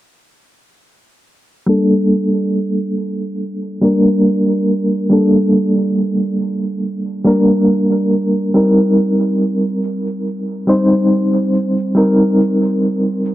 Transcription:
1.66 G3 A#3 D4 A4, shaker
2.11 shaker
2.34 shaker
2.54 shaker
2.97 shaker
3.20 shaker
3.40 shaker
3.81 G3 A#3 D4 A#4, shaker
4.07 shaker
4.24 shaker
4.68 shaker
4.91 shaker
5.10 G3 A#3 D4 A4, shaker
5.52 shaker
5.76 shaker
5.97 shaker
6.38 shaker
6.62 shaker
6.82 shaker
7.24 G3 A#3 D4 A#4, shaker
7.48 shaker
7.68 shaker
8.12 shaker
8.34 shaker
8.54 G3 C4 D#4 A#4, shaker
8.96 shaker
9.19 shaker
9.39 shaker
9.83 shaker
10.06 shaker
10.27 shaker
10.67 G3 C4 D#4 C5, shaker
10.92 shaker
11.11 shaker
11.54 shaker
11.77 shaker
11.95 G3 C4 D#4 A#4, shaker
12.40 shaker
12.63 shaker
12.83 shaker
13.25 shaker

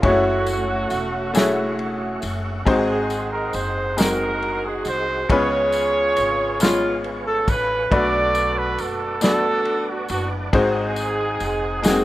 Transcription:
0.02 F#1 G#3 A3 C#4 E4 F#4 C#5 E5 F#5 C#6, kick, ride
0.06 A3 F#4
0.46 ride, tambourine
0.90 E1, ride, tambourine
1.34 A3 C#4 E4 F#4 G#4, snare, ride, tambourine
1.79 ride
2.22 F#1, ride, tambourine
2.65 G#1 G#2 G#3 C4 D#4 F#4 G#4 C5 D#5 C6, kick, ride
3.10 ride, tambourine
3.33 A#4
3.53 F#1 C5, ride, tambourine
3.97 G#3 C4 D#4 F#4 G#4 A#4, snare, ride, tambourine
4.42 ride
4.66 G#4
4.85 C2, ride, tambourine
4.89 C5
5.28 C#2 C#3 G#3 B3 C#4 F4 G#4 B4 C#5 F5 G#5 C#6, kick, ride
5.72 ride, tambourine
6.17 G#1, ride, tambourine
6.60 G#3 B3 C#4 F4 C#5, snare, ride, tambourine
7.04 ride
7.27 A4
7.48 A1 B4, kick, ride, tambourine
7.91 B1 B2 A3 B3 D4 F#4 A4 B4 D5 F#5 A5 D6, kick, ride
8.35 ride, tambourine
8.58 B4
8.78 F#1 A4, ride, tambourine
9.21 A3 B3 D4 F#4 A4 D5, snare, ride, tambourine
9.65 ride
9.91 F#4
10.08 F#1 F#4, ride, tambourine
10.53 G#1 G#2 G#3 C4 D#4 F#4 G#4 C5 G#5 D#6, kick, ride
10.96 ride, tambourine
11.40 F1, ride, tambourine
11.82 G#3 A#3 D#4 F#4 G#4, snare, ride, tambourine
11.90 C4

